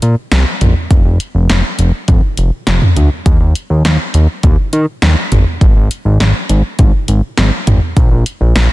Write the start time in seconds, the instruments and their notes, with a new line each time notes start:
0.02 analog synth bass A#2, closed hi-hat
0.32 analog synth bass C2, snare, closed hi-hat
0.61 analog synth bass A#1, closed hi-hat, mid tom
0.91 analog synth bass F1, kick, closed hi-hat
1.05 analog synth bass F1
1.20 closed hi-hat
1.35 analog synth bass F1
1.49 analog synth bass F1, snare, closed hi-hat
1.79 analog synth bass F1, closed hi-hat
2.08 analog synth bass F1, kick, closed hi-hat, mid tom
2.37 analog synth bass F1, closed hi-hat
2.67 analog synth bass F1, snare, closed hi-hat
2.82 mid tom
2.96 analog synth bass D2, closed hi-hat
3.26 analog synth bass D#2, kick, closed hi-hat
3.41 analog synth bass D#2
3.55 closed hi-hat
3.70 analog synth bass D#2
3.85 analog synth bass D#2, snare, closed hi-hat
4.14 analog synth bass D#2, closed hi-hat
4.43 analog synth bass D#2, kick, closed hi-hat, mid tom
4.73 analog synth bass D#3, closed hi-hat
5.02 analog synth bass D#2, snare, closed hi-hat
5.32 analog synth bass G#1, closed hi-hat, mid tom
5.61 analog synth bass G#1, kick, closed hi-hat
5.76 analog synth bass G#1
5.91 closed hi-hat
6.05 analog synth bass G#1
6.20 analog synth bass G#1, snare, closed hi-hat
6.49 analog synth bass G#1, closed hi-hat
6.79 analog synth bass G#1, kick, closed hi-hat, mid tom
7.08 analog synth bass G#1, closed hi-hat
7.37 analog synth bass G#1, snare, closed hi-hat
7.67 analog synth bass G#1, closed hi-hat, mid tom
7.97 analog synth bass A#1, kick, closed hi-hat
8.11 analog synth bass A#1
8.26 closed hi-hat
8.41 analog synth bass A#1
8.55 analog synth bass A#1, snare, closed hi-hat